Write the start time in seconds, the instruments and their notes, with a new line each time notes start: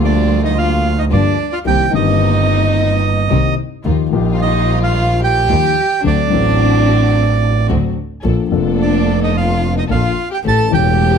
Already playing: grand piano D2 D3 F3 A#3 D4 G4, double bass D2, string section G3 A#3 F4
0.03 violin D4, bandoneon D5
0.44 violin D#4, bandoneon D#5
0.57 violin F4, bandoneon F5
0.98 violin D#4, bandoneon D#5
1.10 grand piano G1 G2 F3 A#3 D4 G4, double bass G1, string section G3 A#3 F4, violin D4, bandoneon D5
1.52 violin F4, bandoneon F5
1.65 grand piano C2 C3 D#3 A#3 C4 G4, double bass C2, string section A#3 C4 D#4, violin G4, bandoneon G5
1.91 double bass G1, grand piano G1 G2 D#3 A#3 C4, string section A#3 C4 D#4, violin D#4
1.95 grand piano G4, bandoneon D#5
3.30 double bass C2, grand piano C2 C3 D#3 A#3 C4 G4, string section A#3 C4 D#4
3.84 grand piano D#2 D#3 F3 A#3 D#4 G4, double bass D#2, string section G3 D#4 F4
4.10 grand piano A#1 A#2 F3 A#3 D#4, double bass A#1, string section G3 D#4 F4
4.14 grand piano G4
4.33 violin F4, bandoneon F5
4.40 violin D#4, bandoneon D#5
4.82 violin F4, bandoneon F5
5.23 violin G4, bandoneon G5
5.48 grand piano D#2 D#3 F3 A#3 D#4 G4, double bass D#2, string section G3 D#4 F4
6.04 grand piano D2 D3 F#3 C4 D4 A4, double bass D2, string section C4 D4 F#4, violin D4, bandoneon D5
6.30 double bass A1, grand piano A1 A2 F#3 C4 D4, string section C4 D4 F#4
6.34 grand piano A4
7.69 grand piano D2 D3 F#3 C4 D4 A4, double bass D2, string section C4 D4 F#4
8.24 double bass A#1, grand piano A#1 A#2 F3 A#3 D4 A4, string section A#3 D4 A4
8.49 grand piano F1 F2 F3 A#3 D4, double bass F1, string section A#3 D4 A4
8.54 grand piano A4
8.80 violin D4, bandoneon D5
9.22 violin D#4, bandoneon D#5
9.36 violin F4, bandoneon F5
9.77 violin D#4, bandoneon D#5
9.89 double bass A#1, grand piano A#1 A#2 F3 A#3 D4 A4, string section A#3 D4 A4, violin F4, bandoneon F5
10.31 violin G4, bandoneon G5
10.44 double bass A1, grand piano A1 A2 E3 A3 C#4 G4, string section A3 C#4 G4, violin A4, bandoneon A5
10.70 grand piano E1 E2 E3 A3 C#4, double bass E1, string section A3 C#4 G4, violin G4
10.74 grand piano G4, bandoneon G5